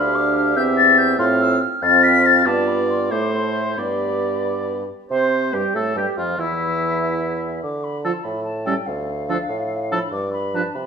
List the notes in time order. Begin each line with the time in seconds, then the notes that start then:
Already playing: D2 D4 G4 F5 B5
0.15 D6
0.35 F6
0.56 E2 C4 E5 G6
0.77 A6
0.98 G6
1.18 A2 C4 F4 F5 C6
1.40 E6
1.61 F6
1.82 F2 C4 F4 F5 A6
2.03 B6
2.26 A6
2.45 G2 B3 F4 D5 A5
2.67 B5
2.90 C6
3.10 A2 A3 E4 C5 D6
3.33 C6
3.77 G2 B3 G4 D5 B5
5.10 C3 C4 C5 C6
5.53 G2 G3 G4 G5
5.75 A2 A3 A4 A5
5.96 G2 G3 G4 G5
6.17 F2 F3 F4 F5
6.38 E2 E3 E4 E5
7.63 D3 D6
7.84 B5
8.04 F3 F4 A4 A5
8.23 A2 B5
8.44 A5
8.65 G3 C#4 A4 G5
8.86 D2 F5
9.29 F3 D4 A4
9.49 A2
9.92 F3 D4 A4 B5
10.12 G2 D6
10.33 B5
10.55 F3 D4 B4 A5
10.75 C3 B5